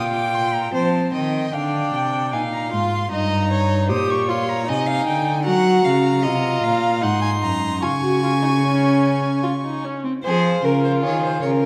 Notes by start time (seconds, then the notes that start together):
Already playing: A#2 F4 G5
0.14 D6
0.34 C6
0.54 A#5
0.74 F3 C4 C5 A5
1.13 D#3 D#5 G5
1.53 D3 D4 F5 G5
1.93 C3 G5
2.32 A#2 D#4 F5 G#5
2.53 A#5
2.72 G#2 F4 C6
3.11 G2 D#4 D#5 A#5
3.51 C#5
3.89 A#2 G4 C5 D#6
4.10 C#6
4.28 F4 C#5 C6
4.49 A#5
4.66 C3 D#4 D#5 G#5
4.87 F5
5.06 D3 G5
5.45 F#3 F#4 F#5 A#5
5.84 C#3 F5
6.23 C3 F4 D#5
6.63 A#2 F5
7.02 G#2 D#4 F#5 C6
7.22 G#5
7.43 F#2 A#5
7.82 C#3 F4 G#5 C#6
8.03 F#4
8.23 F4
8.42 D#4
8.63 C#4
9.43 F4
9.64 D#4
9.84 C#4
10.04 C4
10.24 F3 F4 G#4 C5
10.64 C#3 A#4
10.84 C5
11.03 D#3 G#4 C#5
11.22 C5
11.42 C#3 A#4 C#5
11.62 A#4